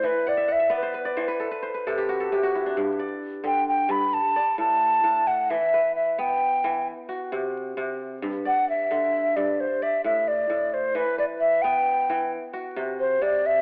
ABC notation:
X:1
M:12/8
L:1/16
Q:3/8=88
K:Em
V:1 name="Flute"
B2 d2 e2 B6 z12 | z6 g2 g2 b2 a4 a6 f2 | e4 e2 g6 z12 | z2 f2 e6 d2 c2 e2 e2 d4 c2 |
B2 d2 e2 g6 z6 c2 d2 e2 |]
V:2 name="Kora"
z2 f e f e d c B d c B A B c B A G F A G F E D- | D z d6 z6 d6 z4 | z2 B6 z6 F6 z4 | z2 d6 z6 d6 z4 |
z2 B6 z6 F6 z4 |]
V:3 name="Kora" clef=bass
E,4 z2 B,4 E,2 z4 C,4 C,4 | G,,4 z2 D,4 G,,2 z4 A,,4 A,,4 | E,4 z2 B,4 E,2 z4 C,4 C,4 | G,,4 z2 D,4 G,,2 z4 A,,4 A,,4 |
E,4 z2 B,4 E,2 z4 C,4 C,4 |]